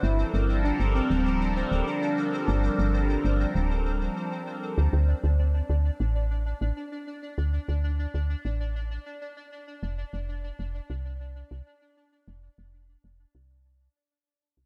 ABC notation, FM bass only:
X:1
M:4/4
L:1/16
Q:1/4=98
K:Dm
V:1 name="FM bass" clef=bass
G,,, z G,,,3 G,,, z D,,,4 D,,, z4 | G,,, z G,,,3 G,,, z D,,,4 z4 D,, | D,, z D,,3 D,, z A,,,4 A,,, z4 | D,, z D,,3 D,, z A,,,4 z4 z |
F,,, z F,,,3 F,,, z C,,4 C,, z4 | F,,, z F,,,3 F,,, z C,,4 z4 C,, |]